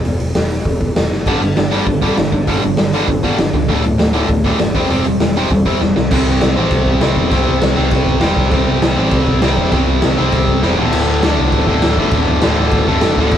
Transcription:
0.05 picked electric bass E1, open hi-hat
0.20 picked electric bass E1, open hi-hat
0.35 picked electric bass E1, snare, open hi-hat
0.51 open hi-hat
0.65 picked electric bass E1, kick, open hi-hat
0.81 kick, open hi-hat
0.96 picked electric bass E1, snare, open hi-hat
1.11 picked electric bass F#1, snare
1.26 picked electric bass G1, distorted electric guitar G2 D3 G3, kick, crash
1.41 picked electric bass G1, distorted electric guitar G2 D3, open hi-hat
1.57 picked electric bass G1, distorted electric guitar G2 D3, snare, open hi-hat
1.71 distorted electric guitar G2 D3 G3, open hi-hat
1.86 picked electric bass G1, distorted electric guitar G2 D3, kick, open hi-hat
2.02 distorted electric guitar G2 D3 G3, kick, open hi-hat
2.17 picked electric bass G1, distorted electric guitar G2 D3, snare, open hi-hat
2.32 picked electric bass G1, distorted electric guitar G2 D3, kick, open hi-hat
2.47 picked electric bass G1, distorted electric guitar G2 D3 G3, kick, open hi-hat
2.62 picked electric bass G1, distorted electric guitar G2 D3, open hi-hat
2.77 picked electric bass G1, distorted electric guitar G2 D3, snare, open hi-hat
2.93 distorted electric guitar G2 D3 G3, open hi-hat
3.08 picked electric bass G1, distorted electric guitar G2 D3, kick, open hi-hat
3.23 distorted electric guitar G2 D3 G3, kick, open hi-hat
3.38 picked electric bass G1, distorted electric guitar G2 D3, snare, open hi-hat
3.53 picked electric bass C#2, distorted electric guitar G2 D3, kick, open hi-hat
3.69 picked electric bass D1, distorted electric guitar D2 A2 D3, kick, open hi-hat
3.83 picked electric bass D1, distorted electric guitar D2 A2, open hi-hat
3.98 picked electric bass D1, distorted electric guitar D2 A2, snare, open hi-hat
4.13 distorted electric guitar D2 A2 D3, open hi-hat
4.28 picked electric bass D1, distorted electric guitar D2 A2, kick, open hi-hat
4.44 distorted electric guitar D2 A2 D3, kick, open hi-hat
4.59 picked electric bass F#1, distorted electric guitar D2 A2, snare, open hi-hat
4.74 picked electric bass E1, distorted electric guitar C3 G3 C4, kick, open hi-hat
4.90 picked electric bass E1, distorted electric guitar C3 G3 C4, open hi-hat
5.05 picked electric bass E1, distorted electric guitar C3 G3, open hi-hat
5.20 picked electric bass E1, distorted electric guitar C3 G3, snare, open hi-hat
5.35 distorted electric guitar C3 G3 C4, open hi-hat
5.50 picked electric bass E1, distorted electric guitar C3 G3, kick, open hi-hat
5.66 distorted electric guitar C3 G3 C4, kick, open hi-hat
5.80 picked electric bass E1, distorted electric guitar C3 G3, snare
5.96 picked electric bass B1, distorted electric guitar C3 G3, snare
6.11 picked electric bass C2, distorted electric guitar C3 G3 C4, kick, crash
6.26 picked electric bass C2
6.41 picked electric bass C2, snare, crash
6.56 picked electric bass A1, distorted electric guitar C3 G3 C4
6.71 picked electric bass C2, kick, crash
6.86 picked electric bass C2, kick
7.01 picked electric bass C2, distorted electric guitar C3 G3 C4, snare, crash
7.16 picked electric bass E1, kick
7.30 picked electric bass C2, distorted electric guitar C3 G3 C4, kick, crash
7.48 picked electric bass C2
7.62 picked electric bass C2, snare, crash
7.76 picked electric bass C2, distorted electric guitar C3 G3 C4
7.91 picked electric bass C2, kick, crash
8.06 picked electric bass C2, kick
8.21 picked electric bass E1, distorted electric guitar C3 G3 C4, snare, crash
8.37 picked electric bass C2, kick
8.51 picked electric bass C2, distorted electric guitar C3 G3 C4, kick, crash
8.67 picked electric bass C2
8.82 picked electric bass C2, snare, crash
8.96 picked electric bass A1, distorted electric guitar C3 G3 C4
9.11 picked electric bass C2, kick, crash
9.27 picked electric bass C2, kick
9.41 picked electric bass C2, distorted electric guitar C3 G3 C4, snare, crash
9.57 picked electric bass E1, kick
9.72 picked electric bass C2, distorted electric guitar C3 G3 C4, kick, crash
9.87 picked electric bass C2
10.02 picked electric bass C2, snare, crash
10.17 picked electric bass C2, distorted electric guitar C3 G3 C4
10.32 picked electric bass C2, kick, crash
10.47 picked electric bass C2, kick
10.62 picked electric bass E1, distorted electric guitar C3 G3 C4, snare
10.77 picked electric bass D1, distorted electric guitar D2 A2 D3, floor tom
10.92 picked electric bass D1, crash
11.07 picked electric bass D1
11.23 distorted electric guitar D2 A2 D3, picked electric bass D2, snare, crash
11.38 picked electric bass C2
11.52 picked electric bass D1, kick, crash
11.67 picked electric bass D1, distorted electric guitar D2 A2 D3, kick
11.82 picked electric bass D1, snare, crash
11.97 picked electric bass F#1, distorted electric guitar D2 A2 D3, kick
12.11 picked electric bass D1, kick, crash
12.27 picked electric bass D1
12.41 picked electric bass D1, distorted electric guitar D2 A2 D3, snare, crash
12.58 picked electric bass D1
12.71 picked electric bass D1, kick, crash
12.86 picked electric bass D1, distorted electric guitar D2 A2 D3, kick
13.01 picked electric bass F#1, snare, crash
13.17 picked electric bass D1, distorted electric guitar D2 A2 D3, kick
13.31 picked electric bass D1, kick, crash

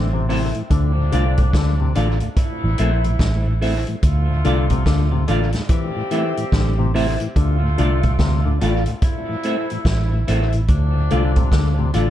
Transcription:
Already playing: fingered electric bass A1, horn section A2 E3 C4
0.13 tonewheel organ A2 E3, clav C3
0.29 clav C3, tonewheel organ A3 C4 E4, clean electric guitar E4 A4 C5 E5, open hi-hat
0.55 tonewheel organ A2 E3, closed hi-hat
0.70 fingered electric bass D2, horn section A2 F3 D4, clav D3, kick, closed hi-hat
0.97 tonewheel organ D2 A2
1.12 fingered electric bass C2, clav D3, tonewheel organ A3 D4 F4, clean electric guitar F4 A4 D5 F5, closed hi-hat
1.37 tonewheel organ D2 A2, kick, closed hi-hat
1.53 fingered electric bass D2, clav D3, kick, snare, closed hi-hat
1.80 tonewheel organ D2 A2, clav C3
1.95 fingered electric bass A1, clav D3, tonewheel organ A3 D4 F4, clean electric guitar F4 A4 D5 F5, closed hi-hat
2.20 tonewheel organ D2 A2, muted clean electric guitar stroke, closed hi-hat
2.36 horn section C3 A3 E4, kick, closed hi-hat
2.63 fingered electric bass A1, tonewheel organ A2 E3
2.78 fingered electric bass A#1, tonewheel organ A3 C4 E4, clean electric guitar E4 A4 C5 E5, closed hi-hat
3.04 tonewheel organ A2 E3, closed hi-hat
3.19 fingered electric bass A1, kick, snare, closed hi-hat
3.47 tonewheel organ A2 E3
3.61 tonewheel organ A3 C4 E4, clean electric guitar E4 A4 C5 E5, open hi-hat
3.87 tonewheel organ A2 E3, closed hi-hat
4.03 fingered electric bass D2, horn section D3 A3 F4, kick, closed hi-hat
4.29 tonewheel organ D2 A2
4.44 fingered electric bass C2, clav D3, tonewheel organ A3 D4 F4, clean electric guitar F4 A4 D5 F5, closed hi-hat
4.70 tonewheel organ D2 A2, clav C3, kick, closed hi-hat
4.86 fingered electric bass D2, clav D3, kick, snare, closed hi-hat
5.12 tonewheel organ D2 A2, clav C3
5.28 fingered electric bass A1, clav D3, tonewheel organ A3 D4 F4, clean electric guitar F4 A4 D5 F5, closed hi-hat
5.52 tonewheel organ D2 A2, muted clean electric guitar stroke, snare, closed hi-hat
5.69 clav E3, horn section E3 C4 G4, kick, closed hi-hat
5.96 tonewheel organ A2 E3
6.11 clav E3, tonewheel organ A3 C4 E4, clean electric guitar E4 A4 C5 E5, closed hi-hat
6.37 tonewheel organ A2 E3, closed hi-hat
6.52 fingered electric bass A1, clav D3, kick, snare, closed hi-hat
6.79 tonewheel organ A2 E3, clav C3
6.94 clav C3, tonewheel organ A3 C4 E4, clean electric guitar E4 A4 C5 E5, open hi-hat
7.20 tonewheel organ A2 E3, closed hi-hat
7.36 fingered electric bass D2, horn section D3 A3 F4, clav D3, kick, closed hi-hat
7.62 tonewheel organ D2 A2
7.78 fingered electric bass C2, clav D3, tonewheel organ A3 D4 F4, clean electric guitar F4 A4 D5 F5, closed hi-hat
8.03 tonewheel organ D2 A2, kick, closed hi-hat
8.19 fingered electric bass D2, clav C3, kick, snare, closed hi-hat
8.45 tonewheel organ D2 A2, clav D3
8.61 fingered electric bass A1, clav A2, tonewheel organ A3 D4 F4, clean electric guitar F4 A4 D5 F5, closed hi-hat
8.86 tonewheel organ D2 A2, muted clean electric guitar stroke, closed hi-hat
9.02 horn section C3 A3 E4, kick, closed hi-hat
9.29 tonewheel organ A2 E3
9.43 tonewheel organ A3 C4 E4, clean electric guitar E4 A4 C5 E5, closed hi-hat
9.70 tonewheel organ A2 E3, closed hi-hat
9.85 fingered electric bass A1, kick, snare, closed hi-hat
10.13 tonewheel organ A2 E3
10.28 fingered electric bass A1, tonewheel organ A3 C4 E4, clean electric guitar E4 A4 C5 E5, closed hi-hat
10.52 tonewheel organ A2 E3, closed hi-hat
10.68 fingered electric bass D2, horn section A2 F3 D4, kick, closed hi-hat
10.95 tonewheel organ D2 A2
11.10 fingered electric bass C2, clav D3, tonewheel organ A3 D4 F4, clean electric guitar F4 A4 D5 F5, closed hi-hat
11.36 tonewheel organ D2 A2, clav C3, kick, closed hi-hat
11.52 fingered electric bass D2, clav D3, kick, snare, closed hi-hat
11.78 tonewheel organ D2 A2, clav C3
11.94 fingered electric bass A1, clav D3, tonewheel organ A3 D4 F4, clean electric guitar F4 A4 D5 F5, closed hi-hat

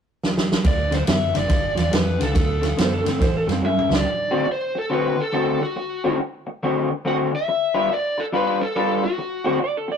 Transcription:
0.23 snare
0.38 snare
0.52 snare
0.64 fingered electric bass D2, clean electric guitar D3 A3, lead electric guitar D5, kick, snare, ride
0.91 clean electric guitar D3 A3, snare, ride
0.95 lead electric guitar C5
1.07 fingered electric bass F#2, clean electric guitar D3 B3, lead electric guitar E5, snare, ride
1.34 fingered electric bass F#1, clean electric guitar D3 A3, lead electric guitar D5, snare, ride
1.48 fingered electric bass G1, clean electric guitar G2 D3, kick, snare, ride
1.75 fingered electric bass E2, clean electric guitar G2 F3, snare, ride
1.79 lead electric guitar D5
1.92 fingered electric bass F2, clean electric guitar G2 E3, lead electric guitar B4, snare, ride
2.19 fingered electric bass C#2, clean electric guitar G2 D3, lead electric guitar A4, snare, ride
2.34 fingered electric bass D2, clean electric guitar D3 A3, kick, snare, ride
2.62 clean electric guitar D3 A3, snare, ride
2.77 fingered electric bass F#2, clean electric guitar D3 B3, electric slide guitar C5, snare, ride
2.94 electric slide guitar A4
3.04 fingered electric bass G2, clean electric guitar D3 A3, snare, ride
3.08 electric slide guitar C4
3.19 fingered electric bass A1, clean electric guitar A2 E3, electric slide guitar C5, kick, snare, ride
3.37 electric slide guitar A4
3.47 fingered electric bass F#2, clean electric guitar A2 G3, snare, ride
3.52 electric slide guitar C4
3.62 fingered electric bass G2, clean electric guitar A2 F#3, high tom
3.66 electric slide guitar C#4, lead electric guitar E5
3.79 mid tom
3.89 fingered electric bass C#2, clean electric guitar A2 E3, snare
3.95 lead electric guitar D5
4.05 muted clean electric guitar stroke
4.31 clean electric guitar D3 A3 C4 F#4
4.47 muted clean electric guitar stroke
4.52 lead electric guitar C5
4.75 lead electric guitar A4, muted clean electric guitar stroke
4.90 clean electric guitar D3 A3 C4 F#4, lead electric guitar B4
5.17 lead electric guitar A4, muted clean electric guitar stroke
5.33 clean electric guitar D3 A3 C4 F#4, lead electric guitar A4
5.61 lead electric guitar F#4, muted clean electric guitar stroke
5.76 muted clean electric guitar stroke
6.04 clean electric guitar D3 A3 C4 F#4
6.20 muted clean electric guitar stroke
6.47 muted clean electric guitar stroke
6.63 clean electric guitar D3 A3 C4 F#4
6.91 muted clean electric guitar stroke
7.05 clean electric guitar D3 A3 C4 F#4, lead electric guitar F#5
7.33 lead electric guitar E5, muted clean electric guitar stroke
7.48 muted clean electric guitar stroke
7.74 clean electric guitar G3 D4 F4 B4
7.90 lead electric guitar D5, muted clean electric guitar stroke
8.18 lead electric guitar A4, muted clean electric guitar stroke
8.32 clean electric guitar G3 D4 F4 B4, lead electric guitar B4
8.61 lead electric guitar A4, muted clean electric guitar stroke
8.76 clean electric guitar G3 D4 F4 B4, lead electric guitar A4
9.04 lead electric guitar F#4, muted clean electric guitar stroke
9.18 muted clean electric guitar stroke
9.44 clean electric guitar D3 A3 C4 F#4
9.60 electric slide guitar D5, muted clean electric guitar stroke
9.77 electric slide guitar A4
9.88 electric slide guitar D5, muted clean electric guitar stroke

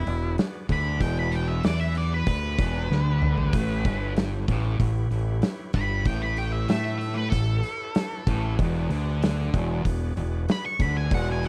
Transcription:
Already playing: lead electric guitar E4
0.06 fingered electric bass E1, distorted electric guitar E2, tonewheel organ F#4 G#4 B4 D5, open hi-hat
0.37 tonewheel organ F#4 G#4 B4 D5, snare, open hi-hat
0.68 fingered electric bass D2, distorted electric guitar D3, tonewheel organ F#4 G#4 B4 D5, kick, open hi-hat
0.72 lead electric guitar B5
0.98 fingered electric bass E1, distorted electric guitar E2, tonewheel organ F#4 G#4 B4 D5, lead electric guitar G5, kick, open hi-hat
1.19 lead electric guitar B5
1.31 tonewheel organ F#4 G#4 B4 D5, lead electric guitar G5, open hi-hat
1.48 lead electric guitar E5
1.64 fingered electric bass E2, distorted electric guitar E3, tonewheel organ F#4 G#4 B4 D5, lead electric guitar D5, snare, open hi-hat
1.81 lead electric guitar E5
1.95 tonewheel organ F#4 G#4 B4 D5, lead electric guitar D5, open hi-hat
2.14 lead electric guitar B4
2.27 fingered electric bass D2, distorted electric guitar D3, tonewheel organ F#4 G#4 B4 D5, lead electric guitar B4, kick, open hi-hat
2.58 fingered electric bass E1, distorted electric guitar E2, tonewheel organ F#4 G#4 B4 D5, kick, open hi-hat
2.90 fingered electric bass D2, distorted electric guitar D3, tonewheel organ F#4 G#4 B4 D5, snare
3.22 tonewheel organ F#4 G#4 B4 D5, mid tom
3.38 floor tom
3.53 fingered electric bass A1, distorted electric guitar A2, tonewheel organ E4 G4 B4 C#5, kick, open hi-hat
3.84 fingered electric bass G1, distorted electric guitar G2, tonewheel organ E4 G4 B4 C#5, kick, open hi-hat
4.15 tonewheel organ E4 G4 B4 C#5, snare, open hi-hat
4.48 fingered electric bass A1, distorted electric guitar A2, tonewheel organ E4 G4 B4 C#5, kick, open hi-hat
4.78 fingered electric bass A1, distorted electric guitar A2, tonewheel organ E4 G4 B4 C#5, kick, open hi-hat
5.10 fingered electric bass A1, distorted electric guitar A2, tonewheel organ E4 G4 B4 C#5, open hi-hat
5.41 tonewheel organ E4 G4 B4 C#5, snare, open hi-hat
5.73 fingered electric bass G1, distorted electric guitar G2, tonewheel organ E4 G4 B4 C#5, lead electric guitar B5, kick, open hi-hat
6.05 fingered electric bass A1, distorted electric guitar A2, tonewheel organ E4 G4 B4 C#5, lead electric guitar G5, kick, open hi-hat
6.22 lead electric guitar B5
6.37 tonewheel organ E4 G4 B4 C#5, lead electric guitar G5, open hi-hat
6.52 lead electric guitar E5
6.68 fingered electric bass A2, distorted electric guitar A3, tonewheel organ E4 G4 B4 C#5, lead electric guitar E5, snare, open hi-hat
6.84 lead electric guitar E5
6.99 tonewheel organ E4 G4 B4 C#5, lead electric guitar E5, open hi-hat
7.14 lead electric guitar B4
7.30 fingered electric bass A1, distorted electric guitar A2, tonewheel organ E4 G4 B4 C#5, lead electric guitar A4, kick, open hi-hat
7.63 tonewheel organ E4 G4 B4 C#5, open hi-hat
7.93 tonewheel organ E4 G4 B4 C#5, snare, open hi-hat
8.26 fingered electric bass A1, distorted electric guitar A2, tonewheel organ E4 G4 B4 C#5, kick, open hi-hat
8.56 fingered electric bass E1, distorted electric guitar E2, tonewheel organ F#4 G#4 B4 D5, kick, open hi-hat
8.88 fingered electric bass D2, distorted electric guitar D3, tonewheel organ F#4 G#4 B4 D5, open hi-hat
9.20 tonewheel organ F#4 G#4 B4 D5, snare, open hi-hat
9.52 fingered electric bass E1, distorted electric guitar E2, tonewheel organ F#4 G#4 B4 D5, kick, open hi-hat
9.83 fingered electric bass E1, distorted electric guitar E2, tonewheel organ F#4 G#4 B4 D5, kick, open hi-hat
10.16 fingered electric bass E1, distorted electric guitar E2, tonewheel organ F#4 G#4 B4 D5, open hi-hat
10.47 tonewheel organ F#4 G#4 B4 D5, snare, open hi-hat
10.52 lead electric guitar B5
10.66 lead electric guitar C#6
10.79 fingered electric bass D2, distorted electric guitar D3, tonewheel organ F#4 G#4 B4 D5, lead electric guitar B5, kick, open hi-hat
10.97 lead electric guitar G#5
11.11 fingered electric bass E1, distorted electric guitar E2, tonewheel organ F#4 G#4 B4 D5, lead electric guitar F#5, kick, open hi-hat
11.31 lead electric guitar G#5
11.43 tonewheel organ F#4 G#4 B4 D5, open hi-hat

